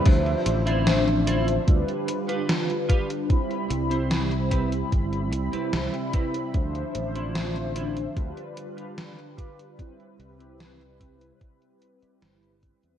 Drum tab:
CC |x---------------|----------------|----------------|----------------|
HH |xxxxxxxxxxxxxxxx|xxxxxxxxxxxxxxxx|xxxxxxxxxxxxxxxx|xxxxxxxxxxxxxxxx|
SD |----o-------o---|----o-------o---|----o-------o---|----o-------o---|
BD |o-------o-----o-|o-----o-o-----o-|o-------o-----o-|o-----o-o-----o-|